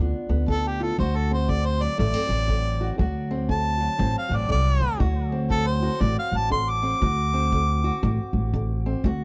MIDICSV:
0, 0, Header, 1, 5, 480
1, 0, Start_track
1, 0, Tempo, 502934
1, 935, Time_signature, 4, 2, 24, 8
1, 8820, End_track
2, 0, Start_track
2, 0, Title_t, "Harmonica"
2, 0, Program_c, 0, 22
2, 471, Note_on_c, 0, 69, 93
2, 643, Note_on_c, 0, 67, 77
2, 657, Note_off_c, 0, 69, 0
2, 787, Note_on_c, 0, 69, 78
2, 801, Note_off_c, 0, 67, 0
2, 937, Note_off_c, 0, 69, 0
2, 952, Note_on_c, 0, 72, 75
2, 1112, Note_on_c, 0, 69, 79
2, 1126, Note_off_c, 0, 72, 0
2, 1260, Note_off_c, 0, 69, 0
2, 1274, Note_on_c, 0, 72, 77
2, 1431, Note_on_c, 0, 74, 83
2, 1445, Note_off_c, 0, 72, 0
2, 1581, Note_on_c, 0, 72, 85
2, 1595, Note_off_c, 0, 74, 0
2, 1740, Note_on_c, 0, 74, 82
2, 1754, Note_off_c, 0, 72, 0
2, 1894, Note_off_c, 0, 74, 0
2, 1903, Note_on_c, 0, 74, 96
2, 2831, Note_off_c, 0, 74, 0
2, 3349, Note_on_c, 0, 81, 95
2, 3963, Note_off_c, 0, 81, 0
2, 3992, Note_on_c, 0, 77, 81
2, 4159, Note_on_c, 0, 74, 76
2, 4173, Note_off_c, 0, 77, 0
2, 4303, Note_off_c, 0, 74, 0
2, 4312, Note_on_c, 0, 74, 96
2, 4769, Note_off_c, 0, 74, 0
2, 5260, Note_on_c, 0, 69, 89
2, 5406, Note_on_c, 0, 72, 80
2, 5421, Note_off_c, 0, 69, 0
2, 5738, Note_on_c, 0, 74, 82
2, 5752, Note_off_c, 0, 72, 0
2, 5891, Note_off_c, 0, 74, 0
2, 5907, Note_on_c, 0, 77, 82
2, 6074, Note_on_c, 0, 81, 79
2, 6088, Note_off_c, 0, 77, 0
2, 6216, Note_off_c, 0, 81, 0
2, 6222, Note_on_c, 0, 84, 95
2, 6390, Note_on_c, 0, 86, 93
2, 6404, Note_off_c, 0, 84, 0
2, 7784, Note_off_c, 0, 86, 0
2, 8820, End_track
3, 0, Start_track
3, 0, Title_t, "Steel-string acoustic guitar"
3, 0, Program_c, 1, 25
3, 0, Note_on_c, 1, 50, 64
3, 0, Note_on_c, 1, 59, 57
3, 0, Note_on_c, 1, 62, 58
3, 0, Note_on_c, 1, 65, 66
3, 270, Note_off_c, 1, 59, 0
3, 281, Note_on_c, 1, 59, 53
3, 420, Note_off_c, 1, 50, 0
3, 460, Note_on_c, 1, 50, 64
3, 755, Note_off_c, 1, 65, 0
3, 765, Note_on_c, 1, 65, 64
3, 902, Note_off_c, 1, 50, 0
3, 918, Note_off_c, 1, 59, 0
3, 919, Note_off_c, 1, 65, 0
3, 939, Note_on_c, 1, 38, 73
3, 947, Note_on_c, 1, 66, 64
3, 1245, Note_off_c, 1, 62, 0
3, 1249, Note_on_c, 1, 60, 58
3, 1382, Note_off_c, 1, 38, 0
3, 1417, Note_on_c, 1, 50, 63
3, 1727, Note_on_c, 1, 54, 57
3, 1861, Note_off_c, 1, 50, 0
3, 1889, Note_off_c, 1, 60, 0
3, 1889, Note_on_c, 1, 45, 62
3, 1893, Note_on_c, 1, 57, 61
3, 2039, Note_off_c, 1, 57, 0
3, 2039, Note_on_c, 1, 60, 53
3, 2187, Note_off_c, 1, 54, 0
3, 2191, Note_on_c, 1, 54, 53
3, 2337, Note_off_c, 1, 45, 0
3, 2366, Note_on_c, 1, 50, 63
3, 2675, Note_off_c, 1, 66, 0
3, 2679, Note_on_c, 1, 66, 60
3, 2815, Note_off_c, 1, 50, 0
3, 2844, Note_on_c, 1, 38, 68
3, 2851, Note_off_c, 1, 66, 0
3, 2853, Note_off_c, 1, 60, 0
3, 2854, Note_on_c, 1, 66, 63
3, 3156, Note_on_c, 1, 60, 62
3, 3294, Note_off_c, 1, 38, 0
3, 3330, Note_on_c, 1, 50, 57
3, 3620, Note_off_c, 1, 54, 0
3, 3631, Note_on_c, 1, 54, 52
3, 3776, Note_off_c, 1, 50, 0
3, 3796, Note_off_c, 1, 60, 0
3, 3801, Note_on_c, 1, 45, 62
3, 3807, Note_on_c, 1, 60, 61
3, 4106, Note_off_c, 1, 54, 0
3, 4118, Note_on_c, 1, 54, 54
3, 4252, Note_off_c, 1, 45, 0
3, 4282, Note_on_c, 1, 50, 60
3, 4579, Note_off_c, 1, 66, 0
3, 4590, Note_on_c, 1, 66, 57
3, 4732, Note_off_c, 1, 50, 0
3, 4749, Note_off_c, 1, 60, 0
3, 4751, Note_off_c, 1, 66, 0
3, 4765, Note_on_c, 1, 38, 67
3, 4771, Note_on_c, 1, 66, 64
3, 5079, Note_on_c, 1, 60, 57
3, 5213, Note_off_c, 1, 38, 0
3, 5248, Note_on_c, 1, 50, 59
3, 5557, Note_off_c, 1, 66, 0
3, 5561, Note_on_c, 1, 66, 65
3, 5694, Note_off_c, 1, 50, 0
3, 5735, Note_on_c, 1, 45, 63
3, 6178, Note_off_c, 1, 45, 0
3, 6207, Note_on_c, 1, 50, 67
3, 6511, Note_off_c, 1, 60, 0
3, 6515, Note_on_c, 1, 60, 52
3, 6654, Note_off_c, 1, 50, 0
3, 6696, Note_off_c, 1, 54, 0
3, 6703, Note_on_c, 1, 38, 72
3, 6704, Note_off_c, 1, 66, 0
3, 6708, Note_on_c, 1, 66, 62
3, 6731, Note_off_c, 1, 60, 0
3, 7000, Note_on_c, 1, 60, 60
3, 7142, Note_off_c, 1, 38, 0
3, 7182, Note_on_c, 1, 50, 62
3, 7479, Note_off_c, 1, 66, 0
3, 7483, Note_on_c, 1, 66, 64
3, 7622, Note_off_c, 1, 50, 0
3, 7664, Note_on_c, 1, 45, 68
3, 8103, Note_off_c, 1, 45, 0
3, 8150, Note_on_c, 1, 50, 66
3, 8453, Note_off_c, 1, 60, 0
3, 8457, Note_on_c, 1, 60, 57
3, 8587, Note_off_c, 1, 50, 0
3, 8633, Note_on_c, 1, 38, 72
3, 8639, Note_off_c, 1, 66, 0
3, 8643, Note_on_c, 1, 66, 65
3, 8662, Note_off_c, 1, 60, 0
3, 8820, Note_off_c, 1, 38, 0
3, 8820, Note_off_c, 1, 66, 0
3, 8820, End_track
4, 0, Start_track
4, 0, Title_t, "Upright bass"
4, 0, Program_c, 2, 32
4, 0, Note_on_c, 2, 38, 98
4, 106, Note_off_c, 2, 38, 0
4, 279, Note_on_c, 2, 38, 76
4, 851, Note_off_c, 2, 38, 0
4, 938, Note_on_c, 2, 38, 88
4, 1771, Note_off_c, 2, 38, 0
4, 1902, Note_on_c, 2, 33, 96
4, 2029, Note_off_c, 2, 33, 0
4, 2185, Note_on_c, 2, 33, 78
4, 2763, Note_off_c, 2, 33, 0
4, 2857, Note_on_c, 2, 38, 90
4, 3689, Note_off_c, 2, 38, 0
4, 3809, Note_on_c, 2, 33, 100
4, 3941, Note_off_c, 2, 33, 0
4, 4100, Note_on_c, 2, 33, 77
4, 4263, Note_off_c, 2, 33, 0
4, 4294, Note_on_c, 2, 36, 77
4, 4563, Note_off_c, 2, 36, 0
4, 4581, Note_on_c, 2, 38, 76
4, 4750, Note_off_c, 2, 38, 0
4, 4772, Note_on_c, 2, 38, 91
4, 5605, Note_off_c, 2, 38, 0
4, 5734, Note_on_c, 2, 33, 99
4, 5863, Note_off_c, 2, 33, 0
4, 6029, Note_on_c, 2, 33, 75
4, 6604, Note_off_c, 2, 33, 0
4, 6696, Note_on_c, 2, 38, 92
4, 7528, Note_off_c, 2, 38, 0
4, 7662, Note_on_c, 2, 33, 100
4, 7788, Note_off_c, 2, 33, 0
4, 7951, Note_on_c, 2, 33, 82
4, 8526, Note_off_c, 2, 33, 0
4, 8627, Note_on_c, 2, 38, 90
4, 8820, Note_off_c, 2, 38, 0
4, 8820, End_track
5, 0, Start_track
5, 0, Title_t, "Drums"
5, 460, Note_on_c, 9, 36, 62
5, 556, Note_off_c, 9, 36, 0
5, 943, Note_on_c, 9, 36, 60
5, 1039, Note_off_c, 9, 36, 0
5, 1423, Note_on_c, 9, 36, 68
5, 1518, Note_off_c, 9, 36, 0
5, 1902, Note_on_c, 9, 36, 60
5, 1998, Note_off_c, 9, 36, 0
5, 2381, Note_on_c, 9, 36, 60
5, 2477, Note_off_c, 9, 36, 0
5, 2857, Note_on_c, 9, 36, 62
5, 2952, Note_off_c, 9, 36, 0
5, 3334, Note_on_c, 9, 36, 69
5, 3430, Note_off_c, 9, 36, 0
5, 3814, Note_on_c, 9, 36, 59
5, 3910, Note_off_c, 9, 36, 0
5, 4296, Note_on_c, 9, 36, 62
5, 4391, Note_off_c, 9, 36, 0
5, 4774, Note_on_c, 9, 36, 65
5, 4870, Note_off_c, 9, 36, 0
5, 5254, Note_on_c, 9, 36, 65
5, 5350, Note_off_c, 9, 36, 0
5, 5736, Note_on_c, 9, 36, 66
5, 5832, Note_off_c, 9, 36, 0
5, 6218, Note_on_c, 9, 36, 65
5, 6313, Note_off_c, 9, 36, 0
5, 6699, Note_on_c, 9, 36, 60
5, 6794, Note_off_c, 9, 36, 0
5, 7180, Note_on_c, 9, 36, 63
5, 7276, Note_off_c, 9, 36, 0
5, 7665, Note_on_c, 9, 36, 63
5, 7760, Note_off_c, 9, 36, 0
5, 8147, Note_on_c, 9, 36, 65
5, 8242, Note_off_c, 9, 36, 0
5, 8628, Note_on_c, 9, 36, 63
5, 8723, Note_off_c, 9, 36, 0
5, 8820, End_track
0, 0, End_of_file